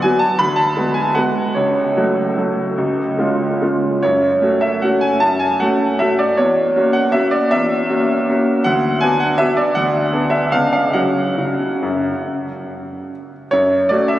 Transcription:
0.02 0.36 F#3 soft
0.02 0.36 B3 soft
0.02 0.37 F#4 soft
0.02 0.21 G#5 medium
0.19 0.38 A5 medium
0.39 0.75 D2 soft
0.39 0.57 B5 medium
0.56 0.95 A5 medium
0.77 1.12 G#3 soft
0.77 1.12 B3 soft
0.77 1.12 F#4 soft
0.94 1.15 G#5 medium
1.15 1.52 G#3 soft
1.15 1.52 B3 soft
1.15 1.52 F#4 soft
1.15 1.55 F#5 medium
1.55 1.94 C#2 soft
1.55 3.62 C#5 medium
1.97 2.33 F#3 soft
1.97 2.34 A3 soft
1.97 2.34 F#4 soft
2.37 2.74 F#3 soft
2.37 2.74 A3 soft
2.37 2.75 F#4 soft
2.78 3.17 C#2 soft
3.18 3.58 G#3 soft
3.18 3.58 C#4 soft
3.18 3.58 F4 soft
3.62 4.00 G#3 soft
3.62 4.00 C#4 soft
3.62 4.00 F4 soft
4.03 4.41 F#2 soft
4.03 4.62 C#5 medium
4.42 4.78 A3 soft
4.42 4.79 C#4 soft
4.42 4.79 F#4 soft
4.61 4.82 E5 medium
4.82 5.18 A3 soft
4.82 5.18 C#4 soft
4.82 5.19 F#4 soft
4.82 5.02 F#5 medium
5.01 5.21 G#5 medium
5.20 5.60 F#2 soft
5.20 5.40 A5 medium
5.39 5.60 G#5 medium
5.60 5.97 A3 soft
5.60 5.97 C#4 soft
5.60 5.97 F#4 soft
5.60 6.00 F#5 medium
5.99 6.34 A3 soft
5.99 6.35 C#4 soft
5.99 6.35 F#4 soft
5.99 6.19 E5 medium
6.19 6.38 D5 medium
6.37 6.75 E2 soft
6.37 6.94 C#5 medium
6.76 7.10 A#3 soft
6.76 7.10 C#4 soft
6.76 7.11 F#4 soft
6.93 7.13 F#5 medium
7.12 7.48 A#3 soft
7.12 7.48 C#4 soft
7.12 7.49 F#4 soft
7.12 7.32 E5 medium
7.31 7.51 D5 medium
7.51 7.88 E2 soft
7.51 8.65 E5 medium
7.90 8.24 A#3 soft
7.90 8.24 C#4 soft
7.90 8.24 F#4 soft
8.29 8.62 A#3 soft
8.29 8.62 C#4 soft
8.29 8.62 F#4 soft
8.64 9.01 D2 medium
8.64 9.01 F#5 medium
9.01 9.36 B3 soft
9.01 9.36 D4 soft
9.01 9.37 F#4 soft
9.01 9.20 G#5 medium
9.20 9.39 F#5 medium
9.38 9.72 B3 soft
9.38 9.73 D4 soft
9.38 9.73 F#4 soft
9.38 9.58 E5 medium
9.57 9.75 D5 medium
9.75 10.11 D2 soft
9.75 10.31 F#5 medium
10.12 10.48 B3 soft
10.12 10.48 D4 soft
10.12 10.48 G#4 soft
10.30 10.51 E5 medium
10.52 10.94 C#2 soft
10.52 10.91 B3 soft
10.52 10.91 D4 soft
10.52 10.92 G#4 soft
10.52 10.71 F5 medium
10.73 10.94 F5 medium
10.93 11.25 F#3 soft
10.93 11.29 C#4 soft
10.93 11.29 F#4 soft
10.93 13.31 F#5 medium
11.38 11.69 C#3 soft
11.82 12.12 F#2 soft
13.51 13.90 F#2 soft
13.51 13.90 C#5 medium
13.89 14.19 A3 soft
13.89 14.19 C#4 soft
13.89 14.19 F#4 soft
13.89 14.10 D5 medium
14.08 14.19 E5 medium

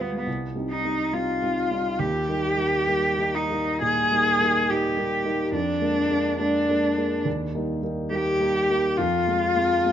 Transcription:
0.00 0.29 D2 soft
0.00 0.30 G3 soft
0.00 0.30 B3 soft
0.00 0.12 B3 soft
0.00 0.30 F4 soft
0.10 0.20 G#3 soft
0.19 0.27 B3 soft
0.26 0.55 C2 soft
0.55 0.82 G3 soft
0.55 0.82 C4 soft
0.55 0.82 D#4 soft
0.70 1.15 D#4 medium
0.85 1.11 G3 soft
0.85 1.11 C4 soft
0.85 1.11 D#4 soft
1.13 1.40 G3 soft
1.13 1.40 C4 soft
1.13 1.40 D#4 soft
1.13 2.00 F4 medium
1.42 1.68 G3 soft
1.42 1.68 C4 soft
1.42 1.69 D#4 soft
1.71 1.97 G3 soft
1.71 1.97 C4 soft
1.71 1.97 D#4 soft
1.99 2.27 D#2 soft
1.99 3.36 G4 medium
2.28 2.55 G3 soft
2.28 2.55 A#3 soft
2.28 2.55 D#4 soft
2.57 2.84 G3 soft
2.57 2.84 A#3 soft
2.57 2.85 D#4 soft
2.87 3.15 G3 soft
2.87 3.15 A#3 soft
2.87 3.16 D#4 soft
3.18 3.47 G3 soft
3.18 3.48 A#3 soft
3.18 3.48 D#4 soft
3.35 3.82 D#4 medium
3.50 3.79 G3 soft
3.50 3.79 A#3 soft
3.50 3.79 D#4 soft
3.81 4.11 A#2 soft
3.81 4.72 G#4 medium
4.11 4.38 G3 soft
4.11 4.38 A#3 soft
4.11 4.38 D#4 soft
4.40 4.66 G3 soft
4.40 4.66 A#3 soft
4.40 4.67 D#4 soft
4.69 4.95 G3 soft
4.69 4.95 A#3 soft
4.69 4.95 D#4 soft
4.69 5.53 G4 medium
4.97 5.23 G3 soft
4.97 5.23 A#3 soft
4.97 5.23 D#4 soft
5.25 5.51 G3 soft
5.25 5.51 A#3 soft
5.25 5.51 D#4 soft
5.52 5.81 F2 soft
5.52 6.38 D4 medium
5.81 6.07 G#3 soft
5.81 6.08 A#3 soft
5.81 6.08 D4 soft
6.10 6.37 G#3 soft
6.10 6.37 A#3 soft
6.10 6.37 D4 soft
6.39 6.66 G#3 soft
6.39 6.66 A#3 soft
6.39 7.24 D4 medium
6.39 6.66 D4 soft
6.68 6.95 G#3 soft
6.68 6.95 A#3 soft
6.68 6.95 D4 soft
6.97 7.23 G#3 soft
6.97 7.23 A#3 soft
6.97 7.23 D4 soft
7.25 7.53 D#2 soft
7.54 7.80 G3 soft
7.54 7.80 A#3 soft
7.54 7.80 D#4 soft
7.82 8.08 G3 soft
7.82 8.09 A#3 soft
7.82 8.09 D#4 soft
8.11 8.37 G3 soft
8.11 8.37 A#3 soft
8.11 8.37 D#4 soft
8.11 8.99 G4 medium
8.40 8.66 G3 soft
8.40 8.66 A#3 soft
8.40 8.66 D#4 soft
8.69 8.95 G3 soft
8.69 8.95 A#3 soft
8.69 8.96 D#4 soft
8.97 9.27 F2 medium
8.97 9.92 F4 medium
9.27 9.54 G#3 soft
9.27 9.54 C4 soft
9.55 9.82 G#3 soft
9.55 9.83 C4 soft
9.85 9.92 G#3 soft
9.85 9.92 C4 soft

